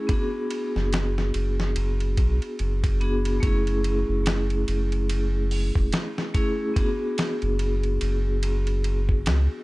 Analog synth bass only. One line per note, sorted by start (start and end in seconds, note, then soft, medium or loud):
0.76 1.31 F#1 medium
1.35 1.76 F#1 medium
1.77 2.19 F#1 loud
2.18 2.39 B1 medium
2.60 3.40 F#1 medium
3.43 4.04 F#1 medium
4.09 4.65 F#1 medium
4.68 5.71 F#1 medium
5.76 5.91 E1 medium
7.43 7.98 F#1 medium
8.02 9.29 F#1 medium
9.27 9.48 C#2 medium